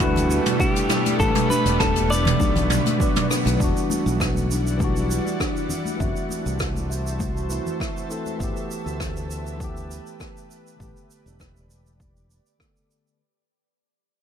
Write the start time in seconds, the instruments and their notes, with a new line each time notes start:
Already playing: fingered electric bass D2, ambient pad E3 G3 A3 B3, tine electric piano A3 G4 B4, clean electric guitar F#4
0.00 tine electric piano G3 E4 B4, kalimba E4, kick, high conga, shaker
0.16 closed hi-hat, muted conga, low conga, shaker
0.30 kalimba B4, shaker
0.46 closed hi-hat, mid tom, high conga, shaker
0.60 kalimba D4, clean electric guitar F#4, kick, muted conga, shaker
0.71 clean electric guitar G4
0.76 closed hi-hat, shaker
0.89 kalimba E4, cross-stick, mid tom, muted conga, shaker
1.06 closed hi-hat, high conga, shaker
1.16 fingered electric bass A1, ambient pad D3, tine electric piano A3 D4, clean electric guitar A4, kalimba B4, kick, shaker
1.21 tine electric piano G4 B4
1.35 closed hi-hat, mid tom, muted conga, shaker
1.50 kalimba D4, clean electric guitar B4, high conga, shaker
1.66 fingered electric bass E1, closed hi-hat, muted conga, shaker
1.80 kalimba E4, clean electric guitar A4, kick, cross-stick, mid tom, shaker
1.96 closed hi-hat, high conga, shaker
2.10 kalimba B4, clean electric guitar D5, muted conga, shaker
2.25 closed hi-hat, mid tom, low conga, shaker
2.40 fingered electric bass B1, kalimba D4, ambient pad F#4, kick, muted conga, high conga, shaker
2.56 closed hi-hat, low conga, shaker
2.70 kalimba F#4, mid tom, shaker
2.86 closed hi-hat, muted conga, high conga, shaker
2.98 tine electric piano F#3 B3 D4 B4, kalimba D5, kick, shaker
3.16 closed hi-hat, mid tom, muted conga, shaker
3.30 kalimba D4, cross-stick, shaker
3.45 fingered electric bass B1, closed hi-hat, high conga, shaker
3.57 fingered electric bass E1, tine electric piano E3 G3, ambient pad G3 E4 D5 F#5, kalimba D4, kick
3.61 tine electric piano D4 F#4, shaker
3.77 shaker
3.90 kalimba E4, high conga, shaker
4.06 fingered electric bass B1, shaker
4.20 kalimba B4, kick, cross-stick, shaker
4.35 high conga, shaker
4.50 kalimba D4, shaker
4.67 shaker
4.77 tine electric piano E3 G3, kalimba E4, kick, high conga, shaker
4.82 tine electric piano D4 F#4
4.96 shaker
5.10 kalimba B4, shaker
5.26 high conga, shaker
5.40 kalimba D4, kick, cross-stick, shaker
5.56 shaker
5.69 kalimba E4, low conga, shaker
5.85 high conga, shaker
5.97 fingered electric bass F#1, tine electric piano E3 A3, ambient pad F#4 C5 E5 A5, kalimba E5, kick
6.01 tine electric piano C4 F#4, shaker
6.16 shaker
6.29 kalimba E4, high conga, shaker
6.46 fingered electric bass C2, shaker
6.60 kalimba F#4, kick, cross-stick, shaker
6.75 high conga, shaker
6.90 kalimba E5, shaker
7.07 shaker
7.19 kalimba E4, kick, high conga, shaker
7.37 shaker
7.48 tine electric piano E3 A3 C4 E4, kalimba F#4, shaker
7.66 high conga, low conga, shaker
7.80 kalimba E5, kick, cross-stick, shaker
7.97 shaker
8.08 tine electric piano E3 A3 C4 A4, kalimba E4, shaker
8.26 high conga, shaker
8.37 fingered electric bass G1, tine electric piano E3 A3, kick
8.41 tine electric piano B3 G4, ambient pad G4 B4, shaker
8.57 shaker
8.71 shaker
8.86 fingered electric bass D2, shaker
9.00 kick, cross-stick, shaker
9.17 shaker
9.31 shaker
9.47 shaker
9.57 tine electric piano E3 A3, kick
9.61 tine electric piano B3 G4, shaker
9.77 shaker
9.91 shaker
10.07 shaker
10.20 kick, cross-stick, shaker
10.37 shaker
10.51 shaker
10.67 shaker
10.77 fingered electric bass A1, tine electric piano D3 A3, ambient pad D5, kick
10.81 tine electric piano B3 G4, shaker
10.97 shaker
11.11 shaker
11.26 fingered electric bass E1, shaker
11.40 kick, cross-stick, shaker
11.56 shaker
11.70 shaker
11.86 shaker
12.00 kick, shaker
12.17 shaker
12.31 shaker
12.46 shaker
12.58 tine electric piano D3 A3 B3 A4, kick, cross-stick, shaker
12.76 shaker
12.91 shaker
13.07 shaker